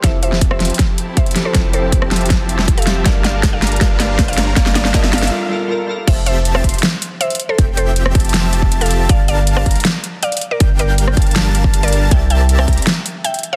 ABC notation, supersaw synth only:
X:1
M:4/4
L:1/8
Q:1/4=159
K:F
V:1 name="Supersaw synth"
[F,CGea]3 [F,CGec'] z4 | [F,CGeg]3 [F,CGea]4- [F,CGea] | [G,DBfa]3 [G,DBfb] [G,DBfa]3 [G,DBfb] | [G,DBfa]2 [G,DBfa]2 z4 |
[F,CGea]3 [F,CGec'] z4 | [F,CGeg]3 [F,CGea]4- [F,CGea] | [G,DBfa]3 [G,DBfb] z4 | [G,DBfg]3 [G,DBfa]4- [G,DBfa] |
[CGBdea]3 [CGBdeb] z4 |]